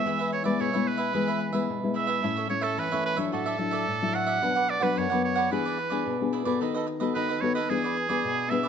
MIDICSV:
0, 0, Header, 1, 5, 480
1, 0, Start_track
1, 0, Tempo, 545455
1, 47, Time_signature, 4, 2, 24, 8
1, 7642, End_track
2, 0, Start_track
2, 0, Title_t, "Oboe"
2, 0, Program_c, 0, 68
2, 0, Note_on_c, 0, 76, 97
2, 258, Note_off_c, 0, 76, 0
2, 293, Note_on_c, 0, 73, 79
2, 394, Note_off_c, 0, 73, 0
2, 399, Note_on_c, 0, 74, 74
2, 534, Note_on_c, 0, 73, 83
2, 548, Note_off_c, 0, 74, 0
2, 771, Note_on_c, 0, 71, 83
2, 784, Note_off_c, 0, 73, 0
2, 1492, Note_off_c, 0, 71, 0
2, 1726, Note_on_c, 0, 76, 90
2, 2174, Note_off_c, 0, 76, 0
2, 2201, Note_on_c, 0, 73, 77
2, 2315, Note_on_c, 0, 69, 72
2, 2329, Note_off_c, 0, 73, 0
2, 2455, Note_on_c, 0, 71, 84
2, 2468, Note_off_c, 0, 69, 0
2, 2684, Note_off_c, 0, 71, 0
2, 2689, Note_on_c, 0, 71, 86
2, 2797, Note_off_c, 0, 71, 0
2, 2937, Note_on_c, 0, 69, 89
2, 3651, Note_on_c, 0, 78, 112
2, 3664, Note_off_c, 0, 69, 0
2, 4136, Note_on_c, 0, 74, 95
2, 4149, Note_off_c, 0, 78, 0
2, 4250, Note_on_c, 0, 71, 81
2, 4263, Note_off_c, 0, 74, 0
2, 4387, Note_on_c, 0, 73, 90
2, 4400, Note_off_c, 0, 71, 0
2, 4612, Note_off_c, 0, 73, 0
2, 4617, Note_on_c, 0, 73, 83
2, 4837, Note_off_c, 0, 73, 0
2, 4858, Note_on_c, 0, 71, 77
2, 5539, Note_off_c, 0, 71, 0
2, 6290, Note_on_c, 0, 71, 85
2, 6522, Note_on_c, 0, 73, 90
2, 6536, Note_off_c, 0, 71, 0
2, 6635, Note_off_c, 0, 73, 0
2, 6640, Note_on_c, 0, 71, 83
2, 6773, Note_on_c, 0, 68, 85
2, 6786, Note_off_c, 0, 71, 0
2, 7482, Note_on_c, 0, 76, 105
2, 7495, Note_off_c, 0, 68, 0
2, 7642, Note_off_c, 0, 76, 0
2, 7642, End_track
3, 0, Start_track
3, 0, Title_t, "Cavaquinho"
3, 0, Program_c, 1, 24
3, 51, Note_on_c, 1, 64, 52
3, 58, Note_on_c, 1, 68, 52
3, 61, Note_on_c, 1, 71, 56
3, 68, Note_on_c, 1, 76, 53
3, 158, Note_off_c, 1, 76, 0
3, 159, Note_off_c, 1, 64, 0
3, 163, Note_off_c, 1, 68, 0
3, 165, Note_off_c, 1, 71, 0
3, 168, Note_on_c, 1, 76, 65
3, 179, Note_on_c, 1, 71, 59
3, 189, Note_on_c, 1, 68, 50
3, 278, Note_off_c, 1, 68, 0
3, 278, Note_off_c, 1, 71, 0
3, 278, Note_off_c, 1, 76, 0
3, 386, Note_on_c, 1, 76, 69
3, 399, Note_on_c, 1, 71, 66
3, 401, Note_on_c, 1, 68, 53
3, 507, Note_off_c, 1, 76, 0
3, 513, Note_off_c, 1, 71, 0
3, 515, Note_off_c, 1, 68, 0
3, 520, Note_on_c, 1, 64, 49
3, 529, Note_on_c, 1, 68, 46
3, 530, Note_on_c, 1, 71, 49
3, 535, Note_on_c, 1, 76, 55
3, 633, Note_off_c, 1, 76, 0
3, 634, Note_off_c, 1, 64, 0
3, 638, Note_off_c, 1, 68, 0
3, 639, Note_off_c, 1, 71, 0
3, 644, Note_on_c, 1, 76, 65
3, 653, Note_on_c, 1, 71, 58
3, 661, Note_on_c, 1, 68, 54
3, 848, Note_off_c, 1, 76, 0
3, 856, Note_off_c, 1, 71, 0
3, 858, Note_on_c, 1, 76, 67
3, 866, Note_on_c, 1, 71, 63
3, 868, Note_off_c, 1, 68, 0
3, 878, Note_on_c, 1, 68, 56
3, 983, Note_off_c, 1, 76, 0
3, 987, Note_off_c, 1, 71, 0
3, 993, Note_off_c, 1, 68, 0
3, 994, Note_on_c, 1, 64, 45
3, 1003, Note_on_c, 1, 68, 49
3, 1007, Note_on_c, 1, 71, 54
3, 1012, Note_on_c, 1, 76, 55
3, 1111, Note_off_c, 1, 64, 0
3, 1112, Note_off_c, 1, 76, 0
3, 1116, Note_off_c, 1, 68, 0
3, 1118, Note_off_c, 1, 71, 0
3, 1123, Note_on_c, 1, 76, 69
3, 1134, Note_on_c, 1, 71, 62
3, 1142, Note_on_c, 1, 68, 50
3, 1224, Note_off_c, 1, 68, 0
3, 1228, Note_off_c, 1, 71, 0
3, 1233, Note_off_c, 1, 76, 0
3, 1343, Note_on_c, 1, 76, 70
3, 1354, Note_on_c, 1, 71, 58
3, 1360, Note_on_c, 1, 68, 56
3, 1705, Note_off_c, 1, 68, 0
3, 1706, Note_off_c, 1, 76, 0
3, 1707, Note_on_c, 1, 64, 50
3, 1712, Note_off_c, 1, 71, 0
3, 1715, Note_on_c, 1, 68, 52
3, 1721, Note_on_c, 1, 71, 49
3, 1726, Note_on_c, 1, 76, 55
3, 1811, Note_off_c, 1, 76, 0
3, 1822, Note_on_c, 1, 76, 67
3, 1823, Note_off_c, 1, 71, 0
3, 1828, Note_off_c, 1, 64, 0
3, 1832, Note_off_c, 1, 68, 0
3, 1834, Note_on_c, 1, 71, 63
3, 1842, Note_on_c, 1, 68, 54
3, 1945, Note_off_c, 1, 76, 0
3, 1951, Note_off_c, 1, 71, 0
3, 1953, Note_on_c, 1, 64, 48
3, 1955, Note_off_c, 1, 68, 0
3, 1961, Note_on_c, 1, 69, 48
3, 1966, Note_on_c, 1, 73, 49
3, 1971, Note_on_c, 1, 76, 53
3, 2071, Note_off_c, 1, 64, 0
3, 2071, Note_off_c, 1, 76, 0
3, 2075, Note_off_c, 1, 69, 0
3, 2077, Note_off_c, 1, 73, 0
3, 2082, Note_on_c, 1, 76, 62
3, 2089, Note_on_c, 1, 73, 58
3, 2100, Note_on_c, 1, 69, 50
3, 2184, Note_off_c, 1, 69, 0
3, 2186, Note_off_c, 1, 73, 0
3, 2188, Note_off_c, 1, 76, 0
3, 2300, Note_on_c, 1, 76, 65
3, 2311, Note_on_c, 1, 73, 59
3, 2315, Note_on_c, 1, 69, 58
3, 2425, Note_off_c, 1, 76, 0
3, 2430, Note_off_c, 1, 73, 0
3, 2432, Note_off_c, 1, 69, 0
3, 2442, Note_on_c, 1, 64, 50
3, 2447, Note_on_c, 1, 69, 51
3, 2452, Note_on_c, 1, 73, 56
3, 2458, Note_on_c, 1, 76, 46
3, 2556, Note_off_c, 1, 64, 0
3, 2556, Note_off_c, 1, 76, 0
3, 2558, Note_off_c, 1, 69, 0
3, 2561, Note_off_c, 1, 73, 0
3, 2567, Note_on_c, 1, 76, 70
3, 2573, Note_on_c, 1, 73, 60
3, 2582, Note_on_c, 1, 69, 54
3, 2775, Note_off_c, 1, 76, 0
3, 2784, Note_off_c, 1, 73, 0
3, 2786, Note_on_c, 1, 76, 64
3, 2794, Note_off_c, 1, 69, 0
3, 2794, Note_on_c, 1, 73, 55
3, 2805, Note_on_c, 1, 69, 57
3, 2908, Note_off_c, 1, 76, 0
3, 2912, Note_off_c, 1, 73, 0
3, 2917, Note_off_c, 1, 69, 0
3, 2923, Note_on_c, 1, 66, 48
3, 2931, Note_on_c, 1, 69, 51
3, 2934, Note_on_c, 1, 74, 51
3, 2941, Note_on_c, 1, 76, 52
3, 3032, Note_off_c, 1, 76, 0
3, 3036, Note_off_c, 1, 66, 0
3, 3040, Note_off_c, 1, 69, 0
3, 3042, Note_off_c, 1, 74, 0
3, 3043, Note_on_c, 1, 76, 62
3, 3053, Note_on_c, 1, 74, 67
3, 3061, Note_on_c, 1, 69, 54
3, 3142, Note_off_c, 1, 69, 0
3, 3148, Note_off_c, 1, 74, 0
3, 3150, Note_off_c, 1, 76, 0
3, 3266, Note_on_c, 1, 76, 65
3, 3278, Note_on_c, 1, 74, 66
3, 3283, Note_on_c, 1, 69, 52
3, 3628, Note_off_c, 1, 76, 0
3, 3633, Note_off_c, 1, 69, 0
3, 3634, Note_off_c, 1, 74, 0
3, 3638, Note_on_c, 1, 66, 50
3, 3644, Note_on_c, 1, 69, 52
3, 3651, Note_on_c, 1, 74, 52
3, 3653, Note_on_c, 1, 76, 57
3, 3743, Note_off_c, 1, 76, 0
3, 3753, Note_off_c, 1, 74, 0
3, 3753, Note_on_c, 1, 76, 70
3, 3754, Note_off_c, 1, 66, 0
3, 3757, Note_off_c, 1, 69, 0
3, 3763, Note_on_c, 1, 74, 56
3, 3769, Note_on_c, 1, 69, 52
3, 3872, Note_off_c, 1, 76, 0
3, 3877, Note_off_c, 1, 74, 0
3, 3879, Note_off_c, 1, 69, 0
3, 3886, Note_on_c, 1, 62, 49
3, 3892, Note_on_c, 1, 71, 51
3, 3897, Note_on_c, 1, 74, 53
3, 3901, Note_on_c, 1, 78, 59
3, 3996, Note_off_c, 1, 78, 0
3, 3998, Note_off_c, 1, 62, 0
3, 4001, Note_off_c, 1, 71, 0
3, 4003, Note_off_c, 1, 74, 0
3, 4006, Note_on_c, 1, 78, 64
3, 4016, Note_on_c, 1, 74, 56
3, 4022, Note_on_c, 1, 71, 56
3, 4113, Note_off_c, 1, 71, 0
3, 4114, Note_off_c, 1, 74, 0
3, 4118, Note_off_c, 1, 78, 0
3, 4225, Note_on_c, 1, 78, 66
3, 4232, Note_on_c, 1, 74, 61
3, 4242, Note_on_c, 1, 71, 57
3, 4348, Note_off_c, 1, 78, 0
3, 4351, Note_off_c, 1, 74, 0
3, 4354, Note_off_c, 1, 71, 0
3, 4360, Note_on_c, 1, 62, 46
3, 4365, Note_on_c, 1, 71, 46
3, 4370, Note_on_c, 1, 74, 54
3, 4380, Note_on_c, 1, 78, 56
3, 4475, Note_off_c, 1, 62, 0
3, 4475, Note_off_c, 1, 78, 0
3, 4477, Note_off_c, 1, 71, 0
3, 4480, Note_off_c, 1, 74, 0
3, 4485, Note_on_c, 1, 78, 62
3, 4499, Note_on_c, 1, 74, 55
3, 4505, Note_on_c, 1, 71, 51
3, 4702, Note_off_c, 1, 78, 0
3, 4711, Note_off_c, 1, 74, 0
3, 4713, Note_on_c, 1, 78, 67
3, 4720, Note_off_c, 1, 71, 0
3, 4722, Note_on_c, 1, 74, 63
3, 4731, Note_on_c, 1, 71, 54
3, 4831, Note_off_c, 1, 78, 0
3, 4836, Note_off_c, 1, 74, 0
3, 4840, Note_off_c, 1, 71, 0
3, 4845, Note_on_c, 1, 64, 50
3, 4849, Note_on_c, 1, 68, 50
3, 4857, Note_on_c, 1, 71, 50
3, 4862, Note_on_c, 1, 74, 52
3, 4958, Note_off_c, 1, 64, 0
3, 4959, Note_off_c, 1, 68, 0
3, 4964, Note_off_c, 1, 71, 0
3, 4966, Note_off_c, 1, 74, 0
3, 4976, Note_on_c, 1, 74, 63
3, 4986, Note_on_c, 1, 71, 56
3, 4991, Note_on_c, 1, 68, 60
3, 5081, Note_off_c, 1, 68, 0
3, 5083, Note_off_c, 1, 74, 0
3, 5084, Note_off_c, 1, 71, 0
3, 5192, Note_on_c, 1, 74, 65
3, 5202, Note_on_c, 1, 71, 64
3, 5209, Note_on_c, 1, 68, 62
3, 5551, Note_off_c, 1, 74, 0
3, 5556, Note_off_c, 1, 71, 0
3, 5559, Note_off_c, 1, 68, 0
3, 5567, Note_on_c, 1, 64, 54
3, 5570, Note_on_c, 1, 68, 53
3, 5576, Note_on_c, 1, 71, 55
3, 5578, Note_on_c, 1, 74, 56
3, 5668, Note_off_c, 1, 74, 0
3, 5677, Note_off_c, 1, 71, 0
3, 5679, Note_off_c, 1, 64, 0
3, 5679, Note_on_c, 1, 74, 69
3, 5680, Note_off_c, 1, 68, 0
3, 5688, Note_on_c, 1, 71, 61
3, 5695, Note_on_c, 1, 68, 54
3, 5795, Note_off_c, 1, 74, 0
3, 5799, Note_off_c, 1, 71, 0
3, 5802, Note_off_c, 1, 68, 0
3, 5812, Note_on_c, 1, 63, 52
3, 5817, Note_on_c, 1, 69, 53
3, 5823, Note_on_c, 1, 71, 55
3, 5828, Note_on_c, 1, 75, 57
3, 5921, Note_off_c, 1, 63, 0
3, 5924, Note_off_c, 1, 69, 0
3, 5924, Note_off_c, 1, 75, 0
3, 5927, Note_off_c, 1, 71, 0
3, 5934, Note_on_c, 1, 75, 64
3, 5943, Note_on_c, 1, 71, 56
3, 5952, Note_on_c, 1, 69, 59
3, 6039, Note_off_c, 1, 69, 0
3, 6040, Note_off_c, 1, 71, 0
3, 6042, Note_off_c, 1, 75, 0
3, 6160, Note_on_c, 1, 75, 65
3, 6167, Note_on_c, 1, 71, 64
3, 6176, Note_on_c, 1, 69, 56
3, 6275, Note_off_c, 1, 75, 0
3, 6278, Note_off_c, 1, 71, 0
3, 6283, Note_off_c, 1, 69, 0
3, 6291, Note_on_c, 1, 63, 51
3, 6296, Note_on_c, 1, 69, 54
3, 6301, Note_on_c, 1, 71, 52
3, 6308, Note_on_c, 1, 75, 55
3, 6401, Note_off_c, 1, 63, 0
3, 6403, Note_off_c, 1, 69, 0
3, 6404, Note_off_c, 1, 75, 0
3, 6406, Note_off_c, 1, 71, 0
3, 6415, Note_on_c, 1, 75, 59
3, 6425, Note_on_c, 1, 71, 61
3, 6432, Note_on_c, 1, 69, 52
3, 6633, Note_off_c, 1, 75, 0
3, 6643, Note_off_c, 1, 71, 0
3, 6644, Note_on_c, 1, 75, 66
3, 6651, Note_off_c, 1, 69, 0
3, 6653, Note_on_c, 1, 71, 65
3, 6661, Note_on_c, 1, 69, 55
3, 6757, Note_off_c, 1, 75, 0
3, 6762, Note_off_c, 1, 71, 0
3, 6766, Note_off_c, 1, 69, 0
3, 6773, Note_on_c, 1, 64, 52
3, 6780, Note_on_c, 1, 68, 46
3, 6784, Note_on_c, 1, 71, 56
3, 6788, Note_on_c, 1, 74, 58
3, 6881, Note_off_c, 1, 64, 0
3, 6885, Note_off_c, 1, 68, 0
3, 6887, Note_off_c, 1, 71, 0
3, 6889, Note_off_c, 1, 74, 0
3, 6900, Note_on_c, 1, 74, 61
3, 6912, Note_on_c, 1, 71, 61
3, 6920, Note_on_c, 1, 68, 59
3, 7004, Note_off_c, 1, 68, 0
3, 7005, Note_off_c, 1, 74, 0
3, 7007, Note_off_c, 1, 71, 0
3, 7119, Note_on_c, 1, 74, 69
3, 7128, Note_on_c, 1, 71, 64
3, 7135, Note_on_c, 1, 68, 56
3, 7475, Note_off_c, 1, 74, 0
3, 7479, Note_off_c, 1, 68, 0
3, 7479, Note_off_c, 1, 71, 0
3, 7484, Note_on_c, 1, 64, 52
3, 7490, Note_on_c, 1, 68, 54
3, 7496, Note_on_c, 1, 71, 54
3, 7501, Note_on_c, 1, 74, 55
3, 7586, Note_off_c, 1, 74, 0
3, 7596, Note_on_c, 1, 74, 68
3, 7597, Note_off_c, 1, 64, 0
3, 7599, Note_off_c, 1, 71, 0
3, 7600, Note_off_c, 1, 68, 0
3, 7610, Note_on_c, 1, 71, 66
3, 7642, Note_off_c, 1, 71, 0
3, 7642, Note_off_c, 1, 74, 0
3, 7642, End_track
4, 0, Start_track
4, 0, Title_t, "Nylon-string guitar"
4, 0, Program_c, 2, 24
4, 0, Note_on_c, 2, 56, 67
4, 0, Note_on_c, 2, 59, 63
4, 0, Note_on_c, 2, 64, 67
4, 48, Note_on_c, 2, 52, 69
4, 362, Note_off_c, 2, 56, 0
4, 364, Note_off_c, 2, 59, 0
4, 365, Note_off_c, 2, 64, 0
4, 397, Note_on_c, 2, 56, 64
4, 402, Note_on_c, 2, 59, 67
4, 405, Note_on_c, 2, 64, 62
4, 504, Note_off_c, 2, 52, 0
4, 530, Note_on_c, 2, 47, 66
4, 604, Note_off_c, 2, 56, 0
4, 606, Note_off_c, 2, 59, 0
4, 608, Note_off_c, 2, 64, 0
4, 656, Note_on_c, 2, 56, 59
4, 660, Note_on_c, 2, 59, 65
4, 665, Note_on_c, 2, 64, 65
4, 974, Note_off_c, 2, 56, 0
4, 976, Note_off_c, 2, 59, 0
4, 978, Note_off_c, 2, 64, 0
4, 985, Note_off_c, 2, 47, 0
4, 1007, Note_on_c, 2, 52, 67
4, 1007, Note_on_c, 2, 56, 56
4, 1010, Note_on_c, 2, 59, 54
4, 1014, Note_on_c, 2, 64, 61
4, 1329, Note_off_c, 2, 56, 0
4, 1331, Note_off_c, 2, 59, 0
4, 1332, Note_off_c, 2, 64, 0
4, 1352, Note_on_c, 2, 56, 59
4, 1357, Note_on_c, 2, 59, 54
4, 1358, Note_on_c, 2, 64, 63
4, 1464, Note_off_c, 2, 52, 0
4, 1491, Note_on_c, 2, 47, 67
4, 1562, Note_off_c, 2, 56, 0
4, 1563, Note_off_c, 2, 59, 0
4, 1565, Note_off_c, 2, 64, 0
4, 1614, Note_on_c, 2, 56, 63
4, 1618, Note_on_c, 2, 59, 60
4, 1621, Note_on_c, 2, 64, 70
4, 1933, Note_off_c, 2, 56, 0
4, 1934, Note_off_c, 2, 59, 0
4, 1936, Note_off_c, 2, 64, 0
4, 1946, Note_off_c, 2, 47, 0
4, 1968, Note_on_c, 2, 45, 65
4, 1971, Note_on_c, 2, 57, 51
4, 1975, Note_on_c, 2, 64, 59
4, 1977, Note_on_c, 2, 61, 55
4, 2171, Note_off_c, 2, 57, 0
4, 2172, Note_off_c, 2, 61, 0
4, 2173, Note_off_c, 2, 64, 0
4, 2201, Note_on_c, 2, 57, 57
4, 2204, Note_on_c, 2, 61, 53
4, 2209, Note_on_c, 2, 64, 63
4, 2425, Note_off_c, 2, 45, 0
4, 2444, Note_on_c, 2, 52, 69
4, 2526, Note_off_c, 2, 57, 0
4, 2528, Note_off_c, 2, 61, 0
4, 2530, Note_off_c, 2, 64, 0
4, 2573, Note_on_c, 2, 57, 59
4, 2576, Note_on_c, 2, 61, 61
4, 2584, Note_on_c, 2, 64, 65
4, 2773, Note_off_c, 2, 57, 0
4, 2775, Note_off_c, 2, 61, 0
4, 2776, Note_off_c, 2, 64, 0
4, 2793, Note_on_c, 2, 54, 62
4, 2798, Note_on_c, 2, 62, 61
4, 2800, Note_on_c, 2, 64, 68
4, 2902, Note_off_c, 2, 52, 0
4, 2929, Note_on_c, 2, 45, 70
4, 3123, Note_off_c, 2, 54, 0
4, 3124, Note_off_c, 2, 62, 0
4, 3126, Note_off_c, 2, 64, 0
4, 3158, Note_on_c, 2, 54, 52
4, 3163, Note_on_c, 2, 62, 54
4, 3168, Note_on_c, 2, 64, 62
4, 3385, Note_off_c, 2, 45, 0
4, 3388, Note_off_c, 2, 54, 0
4, 3392, Note_off_c, 2, 62, 0
4, 3393, Note_off_c, 2, 64, 0
4, 3411, Note_on_c, 2, 45, 66
4, 3538, Note_on_c, 2, 54, 63
4, 3539, Note_on_c, 2, 62, 58
4, 3544, Note_on_c, 2, 64, 73
4, 3855, Note_off_c, 2, 54, 0
4, 3855, Note_off_c, 2, 62, 0
4, 3858, Note_off_c, 2, 64, 0
4, 3866, Note_off_c, 2, 45, 0
4, 3891, Note_on_c, 2, 47, 66
4, 3892, Note_on_c, 2, 54, 50
4, 3896, Note_on_c, 2, 62, 55
4, 3897, Note_on_c, 2, 59, 59
4, 4212, Note_off_c, 2, 54, 0
4, 4213, Note_off_c, 2, 59, 0
4, 4214, Note_off_c, 2, 62, 0
4, 4236, Note_on_c, 2, 54, 56
4, 4240, Note_on_c, 2, 59, 67
4, 4244, Note_on_c, 2, 62, 64
4, 4347, Note_off_c, 2, 47, 0
4, 4374, Note_on_c, 2, 42, 70
4, 4444, Note_off_c, 2, 54, 0
4, 4446, Note_off_c, 2, 59, 0
4, 4448, Note_off_c, 2, 62, 0
4, 4502, Note_on_c, 2, 54, 60
4, 4506, Note_on_c, 2, 62, 63
4, 4507, Note_on_c, 2, 59, 58
4, 4818, Note_off_c, 2, 54, 0
4, 4819, Note_off_c, 2, 59, 0
4, 4819, Note_off_c, 2, 62, 0
4, 4828, Note_off_c, 2, 42, 0
4, 4854, Note_on_c, 2, 52, 69
4, 4858, Note_on_c, 2, 59, 54
4, 4859, Note_on_c, 2, 62, 55
4, 4863, Note_on_c, 2, 68, 67
4, 5078, Note_off_c, 2, 59, 0
4, 5080, Note_off_c, 2, 62, 0
4, 5080, Note_off_c, 2, 68, 0
4, 5201, Note_on_c, 2, 59, 59
4, 5206, Note_on_c, 2, 62, 58
4, 5212, Note_on_c, 2, 68, 64
4, 5309, Note_off_c, 2, 52, 0
4, 5336, Note_on_c, 2, 47, 69
4, 5407, Note_off_c, 2, 59, 0
4, 5410, Note_off_c, 2, 62, 0
4, 5411, Note_off_c, 2, 68, 0
4, 5467, Note_on_c, 2, 59, 60
4, 5471, Note_on_c, 2, 62, 62
4, 5475, Note_on_c, 2, 68, 69
4, 5660, Note_off_c, 2, 59, 0
4, 5662, Note_off_c, 2, 62, 0
4, 5664, Note_off_c, 2, 68, 0
4, 5684, Note_on_c, 2, 59, 59
4, 5691, Note_on_c, 2, 66, 60
4, 5691, Note_on_c, 2, 69, 65
4, 5789, Note_off_c, 2, 47, 0
4, 5820, Note_on_c, 2, 51, 71
4, 6128, Note_off_c, 2, 59, 0
4, 6130, Note_off_c, 2, 66, 0
4, 6132, Note_off_c, 2, 69, 0
4, 6167, Note_on_c, 2, 59, 59
4, 6171, Note_on_c, 2, 66, 62
4, 6175, Note_on_c, 2, 69, 67
4, 6271, Note_off_c, 2, 51, 0
4, 6298, Note_on_c, 2, 51, 74
4, 6490, Note_off_c, 2, 59, 0
4, 6492, Note_off_c, 2, 66, 0
4, 6494, Note_off_c, 2, 69, 0
4, 6530, Note_on_c, 2, 59, 60
4, 6535, Note_on_c, 2, 66, 57
4, 6541, Note_on_c, 2, 69, 63
4, 6671, Note_off_c, 2, 59, 0
4, 6673, Note_off_c, 2, 66, 0
4, 6676, Note_off_c, 2, 69, 0
4, 6750, Note_off_c, 2, 51, 0
4, 6776, Note_on_c, 2, 52, 71
4, 6778, Note_on_c, 2, 59, 53
4, 6782, Note_on_c, 2, 62, 61
4, 6787, Note_on_c, 2, 68, 70
4, 7095, Note_off_c, 2, 59, 0
4, 7097, Note_off_c, 2, 62, 0
4, 7100, Note_off_c, 2, 68, 0
4, 7124, Note_on_c, 2, 59, 54
4, 7130, Note_on_c, 2, 62, 66
4, 7135, Note_on_c, 2, 68, 67
4, 7230, Note_off_c, 2, 52, 0
4, 7258, Note_on_c, 2, 47, 70
4, 7448, Note_off_c, 2, 59, 0
4, 7451, Note_off_c, 2, 62, 0
4, 7454, Note_off_c, 2, 68, 0
4, 7490, Note_on_c, 2, 59, 57
4, 7495, Note_on_c, 2, 62, 55
4, 7498, Note_on_c, 2, 68, 61
4, 7642, Note_off_c, 2, 47, 0
4, 7642, Note_off_c, 2, 59, 0
4, 7642, Note_off_c, 2, 62, 0
4, 7642, Note_off_c, 2, 68, 0
4, 7642, End_track
5, 0, Start_track
5, 0, Title_t, "Muted cavaquinho strokes"
5, 282, Note_on_c, 9, 29, 34
5, 370, Note_off_c, 9, 29, 0
5, 1233, Note_on_c, 9, 29, 35
5, 1321, Note_off_c, 9, 29, 0
5, 2189, Note_on_c, 9, 29, 37
5, 2277, Note_off_c, 9, 29, 0
5, 3150, Note_on_c, 9, 29, 34
5, 3238, Note_off_c, 9, 29, 0
5, 4123, Note_on_c, 9, 29, 36
5, 4211, Note_off_c, 9, 29, 0
5, 5086, Note_on_c, 9, 29, 37
5, 5174, Note_off_c, 9, 29, 0
5, 6042, Note_on_c, 9, 29, 39
5, 6130, Note_off_c, 9, 29, 0
5, 7013, Note_on_c, 9, 29, 38
5, 7101, Note_off_c, 9, 29, 0
5, 7642, End_track
0, 0, End_of_file